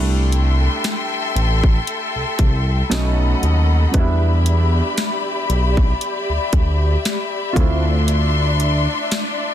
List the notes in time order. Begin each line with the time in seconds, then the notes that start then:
Already playing: C2 G3 A3 D4 E4 A4 E5 G5 C6
0.32 closed hi-hat
0.84 snare, closed hi-hat
1.35 A1, closed hi-hat
1.64 kick
1.87 closed hi-hat
2.15 C2
2.39 C2, kick, closed hi-hat
2.90 B1 F#3 A3 C#4 D#4 D#5 F#5 B5, snare, closed hi-hat
3.43 D#2, closed hi-hat
3.91 E2 F#3 B3 G4 D5 E5, kick, closed hi-hat
3.96 G3 D4 E4
4.46 closed hi-hat
4.98 snare, closed hi-hat
5.49 B1, closed hi-hat
5.77 kick
6.01 closed hi-hat
6.29 D2
6.53 D2, kick, closed hi-hat
7.05 snare, closed hi-hat
7.53 D2 A3 D4 F4 D5 C6, kick, closed hi-hat
7.58 C4 E4
8.08 closed hi-hat
8.60 closed hi-hat
9.12 snare, closed hi-hat